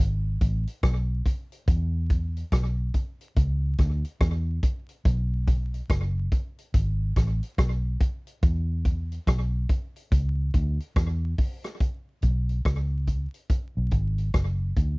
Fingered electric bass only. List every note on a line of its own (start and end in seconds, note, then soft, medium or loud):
0.00 0.36 G#1 medium
0.42 0.65 A1 medium
0.84 1.21 B1 loud
1.68 2.42 E2 loud
2.53 2.90 B1 medium
3.37 3.74 C#2 medium
3.79 4.02 D2 loud
4.21 4.58 E2 loud
5.06 5.80 B1 loud
5.90 6.27 F#1 medium
6.74 7.11 G#1 medium
7.17 7.40 A1 medium
7.59 7.96 B1 medium
8.43 9.18 E2 loud
9.28 9.65 B1 loud
10.12 10.49 C#2 medium
10.54 10.77 D2 loud
10.96 11.34 E2 loud
12.23 12.60 B1 loud
12.66 13.26 C#2 medium
13.77 13.91 B1 medium
13.92 14.29 G#1 medium
14.35 14.72 F#1 medium
14.77 14.99 D2 medium